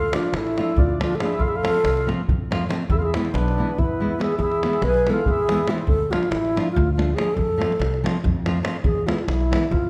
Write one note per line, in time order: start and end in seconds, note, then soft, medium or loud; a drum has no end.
0.00 0.16 D2 medium
0.00 0.11 F4 medium
0.00 0.17 A4 medium
0.12 0.26 F3 medium
0.12 0.26 A3 medium
0.12 0.33 D4 medium
0.12 0.27 D4 medium
0.12 0.27 F4 medium
0.12 0.36 F4 medium
0.12 davul high medium
0.23 davul high soft
0.33 0.60 A1 medium
0.33 0.79 A3 medium
0.33 0.81 E4 medium
0.33 davul high medium
0.47 davul high soft
0.58 0.71 F3 medium
0.58 0.71 A3 medium
0.58 0.71 D4 medium
0.58 0.71 F4 medium
0.58 davul high medium
0.76 1.14 D2 medium
0.76 1.01 D4 medium
0.76 1.02 F4 medium
0.76 davul low loud
1.00 1.12 F3 medium
1.00 1.13 A3 medium
1.00 1.13 D4 soft
1.00 1.16 D4 medium
1.00 1.13 F4 medium
1.00 1.17 F4 medium
1.00 davul high medium
1.15 1.22 F4 medium
1.15 1.23 A4 medium
1.20 1.32 F3 medium
1.20 1.33 A3 medium
1.20 1.33 D4 medium
1.20 1.42 E4 medium
1.20 1.33 F4 medium
1.20 1.42 G#4 medium
1.20 davul high medium
1.39 1.66 F2 medium
1.39 1.48 F4 medium
1.39 1.50 A4 medium
1.39 davul low medium
1.47 1.56 E4 medium
1.47 1.58 G#4 medium
1.55 2.09 F4 medium
1.55 2.09 A4 loud
1.63 1.76 F3 medium
1.63 1.76 A3 medium
1.63 1.77 C4 medium
1.63 1.77 F4 medium
1.63 davul high medium
1.74 davul high soft
1.84 2.11 C2 medium
1.84 davul high medium
1.97 davul high soft
2.07 2.20 F3 medium
2.07 2.20 A3 medium
2.07 2.20 C4 medium
2.07 2.21 F4 medium
2.07 davul high soft
2.28 2.65 F2 medium
2.28 davul low loud
2.51 2.63 F3 medium
2.51 2.63 A3 medium
2.51 2.64 C4 medium
2.51 2.64 F4 medium
2.51 davul high medium
2.69 2.82 F3 medium
2.69 2.82 A3 medium
2.69 2.83 C4 medium
2.69 2.83 F4 medium
2.69 davul high medium
2.89 3.16 E2 loud
2.89 2.96 E4 medium
2.89 2.97 G#4 medium
2.89 davul low medium
2.96 3.03 F4 medium
2.96 3.04 A4 medium
3.02 3.15 E4 medium
3.02 3.16 G#4 medium
3.14 3.27 E3 medium
3.14 3.27 G#3 medium
3.14 3.27 B3 medium
3.14 3.35 C4 medium
3.14 3.35 E4 medium
3.14 3.27 E4 medium
3.14 davul high medium
3.25 davul high soft
3.33 3.60 B1 loud
3.33 3.78 B3 medium
3.33 3.80 D4 medium
3.33 davul high medium
3.48 davul high soft
3.58 3.70 E3 medium
3.58 3.71 G#3 soft
3.58 3.71 B3 soft
3.58 3.71 E4 medium
3.78 4.15 E2 medium
3.78 4.22 B3 medium
3.78 4.22 E4 medium
3.78 davul low medium
4.00 4.12 E3 medium
4.00 4.12 G#3 medium
4.00 4.13 B3 soft
4.00 4.13 E4 medium
4.19 4.31 E3 medium
4.19 4.31 G#3 medium
4.19 4.31 B3 soft
4.19 4.31 E4 medium
4.19 4.40 E4 medium
4.19 4.38 G#4 medium
4.19 davul high medium
4.39 4.65 E2 medium
4.39 4.85 G#4 medium
4.39 davul low medium
4.43 4.82 E4 medium
4.52 davul high soft
4.63 4.75 E3 medium
4.63 4.75 G#3 soft
4.63 4.76 B3 medium
4.63 4.76 E4 medium
4.63 davul high medium
4.73 davul high soft
4.82 5.08 B1 medium
4.82 5.11 B4 loud
4.82 davul high medium
4.88 5.09 G#4 medium
4.94 davul high soft
5.06 5.19 E3 medium
5.06 5.19 G#3 medium
5.06 5.20 B3 medium
5.06 5.20 E4 medium
5.06 5.28 A4 medium
5.06 davul high soft
5.13 5.30 F4 medium
5.26 5.64 E2 medium
5.26 5.70 E4 medium
5.26 5.71 G#4 loud
5.26 davul low medium
5.48 5.60 E3 medium
5.48 5.61 G#3 medium
5.48 5.61 B3 medium
5.48 5.61 E4 medium
5.48 davul high medium
5.58 davul high soft
5.67 5.79 E3 medium
5.67 5.79 G#3 medium
5.67 5.79 B3 medium
5.67 5.80 E4 medium
5.67 5.87 E4 medium
5.67 davul high medium
5.72 5.89 C4 medium
5.78 davul high soft
5.87 6.13 D2 medium
5.87 6.12 A4 loud
5.87 davul low medium
6.11 6.24 F3 medium
6.11 6.24 A3 medium
6.11 6.24 D4 medium
6.11 6.31 F4 medium
6.11 6.25 F4 medium
6.11 davul high medium
6.23 davul high soft
6.30 6.57 A1 medium
6.30 6.71 E4 medium
6.30 davul high medium
6.45 davul high soft
6.56 6.68 F3 medium
6.56 6.68 A3 medium
6.56 6.68 D4 medium
6.56 6.69 F4 medium
6.56 davul high medium
6.72 6.92 F4 medium
6.76 7.12 D2 loud
6.76 davul low medium
6.93 7.16 F4 medium
6.97 7.09 F3 soft
6.97 7.09 A3 medium
6.97 7.10 D4 medium
6.97 7.10 F4 medium
6.97 davul high medium
7.15 7.28 F3 medium
7.15 7.28 A3 medium
7.15 7.29 D4 medium
7.15 7.29 F4 medium
7.15 7.36 G#4 medium
7.15 davul high medium
7.34 7.63 F2 medium
7.34 8.03 A4 loud
7.34 davul low medium
7.58 7.71 F3 medium
7.58 7.71 A3 medium
7.58 7.72 C4 soft
7.58 7.72 F4 medium
7.58 davul high medium
7.72 davul high soft
7.79 8.06 C2 medium
7.79 davul high medium
7.94 davul high soft
8.04 8.16 F3 medium
8.04 8.16 A3 medium
8.04 8.16 C4 medium
8.04 8.17 F4 medium
8.04 davul high medium
8.24 8.60 F2 loud
8.24 davul low medium
8.46 8.57 F3 medium
8.46 8.57 A3 medium
8.46 8.58 C4 medium
8.46 8.58 F4 medium
8.46 davul high medium
8.63 8.75 F3 medium
8.63 8.76 A3 medium
8.63 8.76 C4 medium
8.63 8.76 F4 medium
8.63 davul high medium
8.84 9.10 E2 loud
8.84 9.08 G#4 medium
8.84 davul low medium
9.06 9.19 E3 medium
9.06 9.19 G#3 medium
9.06 9.20 B3 medium
9.06 9.20 E4 medium
9.06 9.19 F4 medium
9.06 davul high medium
9.18 9.28 F4 soft
9.18 davul high soft
9.26 9.54 B1 medium
9.26 9.73 E4 medium
9.26 davul high medium
9.40 davul high soft
9.51 9.63 E3 medium
9.51 9.64 G#3 medium
9.51 9.64 B3 medium
9.51 9.64 E4 medium
9.51 davul high medium
9.71 9.90 E2 loud
9.71 9.90 F4 medium
9.71 davul low medium